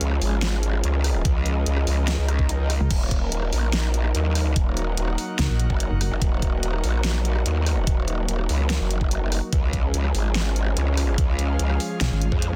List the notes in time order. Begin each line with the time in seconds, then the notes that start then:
Already playing: F3 G#3 C#4 F4 G#4 A#4 F5
0.01 C#2, closed hi-hat
0.11 cross-stick
0.22 G#1, open hi-hat
0.42 snare, closed hi-hat
0.63 closed hi-hat
0.71 D#5, cross-stick
0.84 C#2, closed hi-hat
1.04 cross-stick, open hi-hat
1.25 C#2, kick, closed hi-hat
1.46 closed hi-hat
1.66 C#2, closed hi-hat
1.77 cross-stick
1.87 C#2, open hi-hat
2.08 snare, closed hi-hat, swell
2.18 C#2
2.29 cross-stick, closed hi-hat
2.39 kick
2.49 closed hi-hat
2.70 cross-stick, open hi-hat
2.80 C#2
2.91 D#1 F#3 A#3 D#4 A#4, kick, closed hi-hat, crash
3.11 kick, closed hi-hat
3.21 F#4
3.32 D#1, closed hi-hat
3.42 cross-stick
3.53 A#1, open hi-hat
3.73 snare, closed hi-hat
3.80 F#5
3.94 closed hi-hat
4.05 cross-stick
4.15 D#2, closed hi-hat
4.35 cross-stick, open hi-hat
4.56 D#1, kick, closed hi-hat
4.77 closed hi-hat
4.97 D#1, closed hi-hat
5.08 cross-stick
5.18 open hi-hat
5.39 C#2, snare, closed hi-hat
5.49 A#1
5.60 closed hi-hat
5.70 F#1, kick
5.80 closed hi-hat
5.91 F#1
6.01 cross-stick, open hi-hat
6.11 F#1
6.22 D#1, kick, closed hi-hat
6.42 kick, closed hi-hat
6.63 D#1, closed hi-hat
6.74 cross-stick
6.84 A#1, open hi-hat
7.04 snare, closed hi-hat
7.25 closed hi-hat
7.36 cross-stick
7.46 D#2, closed hi-hat
7.66 cross-stick, open hi-hat
7.87 D#1, kick, closed hi-hat
8.08 closed hi-hat
8.28 D#1, closed hi-hat
8.39 cross-stick
8.49 C#2, open hi-hat
8.70 snare, closed hi-hat
8.80 F#1
8.91 closed hi-hat
9.01 kick
9.11 closed hi-hat
9.32 cross-stick, open hi-hat
9.53 C#2 F3 G#3 C#4 G#4, kick, closed hi-hat
9.63 F4
9.73 kick, closed hi-hat
9.94 C#2, closed hi-hat
10.04 F5, cross-stick
10.15 G#1 G#4, open hi-hat
10.35 snare, closed hi-hat
10.56 closed hi-hat
10.67 cross-stick
10.77 C#2, closed hi-hat
10.97 cross-stick, open hi-hat
11.18 C#2, kick, closed hi-hat
11.39 closed hi-hat
11.59 C#2, closed hi-hat
11.70 cross-stick
11.80 open hi-hat
12.01 B1, snare, closed hi-hat
12.11 G#1
12.22 closed hi-hat
12.32 F2, kick
12.42 closed hi-hat